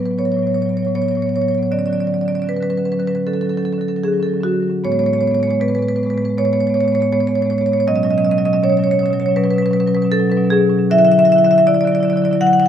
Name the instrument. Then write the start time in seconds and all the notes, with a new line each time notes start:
marimba
Already playing: A2
0.00 F#3 B3 B4
0.06 A2 B4
0.10 F#3 B3
0.18 A2 F#3 B3 C#5
0.25 A2 F#3 B3 C#5
0.32 F#3 B3 C#5
0.37 A2 C#5
0.42 F#3 B3
0.46 A2 F#3 C#5
0.52 A2 B3 C#5
0.58 F#3 B3
0.62 A2 C#5
0.66 F#3 C#5
0.70 F#3 B3
0.76 A2 B3 C#5
0.83 F#3 C#5
0.87 A2 B3
0.95 A2 F#3 B3 C#5
1.02 A2 F#3 B3 C#5
1.08 F#3 B3 C#5
1.15 A2 F#3 B3 C#5
1.22 C#5
1.26 A2 F#3 B3 C#5
1.34 A2 F#3 B3 C#5
1.42 F#3 B3 C#5
1.48 A2 F#3 B3 C#5
1.55 B3 C#5
1.59 A2 F#3 C#5
1.66 B3
1.71 D3 F#3 C#4 D5
1.79 D3 F#3 C#4 D5
1.86 D3 F#3 C#4 D5
1.93 F#3 C#4 D5
1.98 D3 D5
2.02 F#3 C#4
2.06 D3 C#4 D5
2.13 D3 F#3 D5
2.18 F#3 C#4 D5
2.25 D3 F#3 C#4 D5
2.32 D3 C#4 D5
2.37 F#3 C#4
2.42 D3 F#3 D5
2.47 C#4 B4
2.52 D3 F#3 C#4
2.57 D3 B4
2.61 F#3 C#4 B4
2.70 D3 F#3 C#4 B4
2.77 D3 F#3 C#4 B4
2.85 F#3 C#4 B4
2.89 D3 C#4 B4
2.94 F#3
2.99 D3 F#3 C#4 B4
3.07 D3 F#3 C#4 B4
3.15 D3 C#4 B4
3.27 D3 F#3 C#4 A4
3.33 D3 F#3 C#4 A4
3.41 F#3 C#4 A4
3.47 D3 C#4 A4
3.54 D3 F#3 A4
3.58 C#4
3.63 F#3 C#4 A4
3.68 D3 F#3
3.73 C#4 A4
3.78 D3 F#3 C#4 A4
3.88 D3 F#3 C#4 A4
3.96 D3 F#3 C#4 A4
4.04 F#3 C#4 G#4
4.08 D3
4.13 F#3 C#4
4.18 D3 F#3 C#4
4.23 D3 C#4 A4
4.29 F#3
4.34 D3 F#3 C#4
4.40 D3 C#4 F#4
4.44 F#3 C#4
4.52 D3 F#3 C#4
4.60 D3 F#3 C#4
4.68 D3 F#3 C#4
4.84 A2 G#3 B3 C#5
4.91 A2 G#3 B3 C#5
4.99 G#3 B3 C#5
5.04 A2 B3 C#5
5.09 A2 G#3
5.13 B3 C#5
5.18 A2 G#3 C#5
5.23 G#3 B3
5.27 B3 C#5
5.31 A2 G#3 C#5
5.40 A2 G#3 B3 C#5
5.47 A2 G#3 B3 C#5
5.55 B3
5.60 A2 G#3 B3 B4
5.68 A2 G#3 B3 B4
5.75 G#3 B3 B4
5.79 A2 B4
5.84 G#3 B3
5.88 A2 G#3 B4
5.96 A2 G#3 B3 B4
6.03 A2 G#3 B3 B4
6.10 B3 B4
6.15 A2 G#3 B4
6.22 A2 G#3 B3 B4
6.30 G#3
6.37 A2 G#3 B3 C#5
6.44 A2 G#3 B3 C#5
6.52 G#3 B3 C#5
6.57 A2 G#3 C#5
6.62 A2 B3
6.67 G#3 B3 C#5
6.74 A2 G#3 B3 C#5
6.81 G#3 C#5
6.85 A2 B3 C#5
6.92 A2 G#3 B3 C#5
7.00 A2 G#3 B3 C#5
7.12 A2 G#3 B3 C#5
7.20 A2 G#3 B3 C#5
7.27 G#3 B3 C#5
7.31 A2
7.36 G#3 B3 C#5
7.41 A2 B3 C#5
7.46 G#3
7.50 A2 G#3 B3 C#5
7.58 A2 G#3 B3 C#5
7.66 G#3 B3 C#5
7.72 A2 C#5
7.77 G#3 B3 C#5
7.87 B2 F#3 C#4 D#5
7.96 B2 F#3 C#4 D#5
8.03 B2 F#3 C#4 D#5
8.11 F#3 C#4 D#5
8.17 B2 C#4 D#5
8.23 B2 F#3 D#5
8.29 F#3 C#4 D#5
8.36 B2 F#3 C#4 D#5
8.45 B2 F#3 C#4 D#5
8.53 B2 F#3 C#4 D#5
8.63 B2 F#3 C#4 C#5
8.70 B2 F#3 C#4 C#5
8.77 F#3 C#4 C#5
8.83 B2 C#5
8.87 F#3 C#4
8.91 B2 C#4 C#5
8.99 B2 F#3 C#5
9.03 F#3 C#4 C#5
9.11 B2 F#3 C#4 C#5
9.20 B2 F#3 C#4 C#5
9.26 C#4 C#5
9.31 F#3
9.36 B2 F#3 C#4 B4
9.44 B2 F#3 C#4 B4
9.51 F#3 C#4 B4
9.56 B2 B4
9.62 B2 F#3 C#4
9.66 B4
9.70 F#3 C#4 B4
9.76 B2 F#3 C#4
9.80 B4
9.86 B2 F#3 C#4 B4
9.95 B2 F#3 C#4 B4
10.02 F#3 C#4 B4
10.06 B2 F#3
10.12 C#4 A4
10.16 B2 F#3 C#4
10.26 B2 F#3 C#4
10.32 B4
10.37 B2 F#3 C#4
10.44 B2 F#3 C#4
10.50 F#3 C#4 G#4
10.57 B2 C#4
10.61 F#3
10.66 B2 F#3 C#4
10.76 B2 F#3 C#4
10.90 D3 F#3 E4 E5
10.98 D3 F#3 E4 E5
11.05 D3 F#3 E4 E5
11.12 E4 E5
11.17 D3 F#3 E5
11.22 F#3 E4 E5
11.27 D3 E4
11.32 D3 F#3 E5
11.37 E4 E5
11.42 F#3 E4 E5
11.46 D3 F#3
11.51 E4 E5
11.55 D3 F#3 E5
11.60 E4
11.67 D3 F#3 E4 D5
11.74 D3 F#3 E4 D5
11.81 F#3 E4 D5
11.85 D3 D5
11.92 D3 F#3 E4 D5
12.00 F#3 E4 D5
12.05 D3 E4
12.09 D3 F#3 D5
12.16 F#3 E4 D5
12.22 D3 E4 D5
12.26 F#3
12.30 D3 E4 D5
12.35 F#3
12.40 D3 F#3 E4 F#5
12.47 D3 E4 F#5
12.51 F#3 F#5
12.56 D3 F#3 E4 F#5
12.63 E4